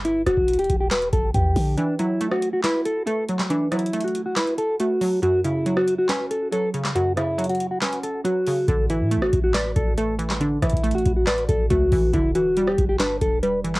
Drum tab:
HH |x-----------x-----------x--x--x--x--x-----------x-----x-----x-----------x-----------o-----------|x-----------x-----------x-----------x-----------x-----------x-----------x-----------x-----------|x-----------x---x---x---x---x---x---x-----------x-----x-----x-----------x-----------o-----------|x-----------x-----------x-----------x-----------x-----------x-----------x-----------x-----------|
CP |------------------------------------------------x-----------------------------------------------|------------------------------------------------x-----------------------------------------x-----|------------------------------------------------x-----------------------------------------------|------------------------------------------------x-----------------------------------------x-----|
SD |------------r-----------------------------------o-----------------------------------------------|------------------------------r-----------------o-----------------------------------------o-----|------------r-----------------------------------o-----------------------------------------------|------------------------------r-----------------o-----------------------------------------o-----|
BD |------------------o-----------------o-----------------------o-----------o-----------o-----------|------------------------------------------------------------------------------------------------|------------------------------------------------------------------------------------------------|------------------------------------------------------------------------------------------------|

HH |x-----------x-----------x--x--x--x--x-----------x-----x-----x-----------x-----------o-----------|x-----------x-----------x-----------x-----------x-----------x-----------x-----------x-----------|x-----------x---x---x---x---x---x---x-----------x-----x-----x-----------x-----------o-----------|x-----------x-----------x-----------x-----------x-----------x-----------x-----------x-----------|
CP |------------------------------------------------x-----------------------------------------------|------------------------------------------------x-----------------------------------------x-----|------------------------------------------------x-----------------------------------------------|------------------------------------------------x-----------------------------------------x-----|
SD |------------r-----------------------------------o-----------------------------------------------|------------------------------r-----------------o-----------------------------------------o-----|------------r-----------------------------------o-----------------------------------------------|------------------------------r-----------------o-----------------------------------------o-----|
BD |------------------------------------------------------------------------------------------------|o-----------------------------------o-----------------------o-----------------------------------|------------------o-----------------o-----------------------o-----------o-----------o-----------|o-----------------------------------o-----------------------o-----------------------------------|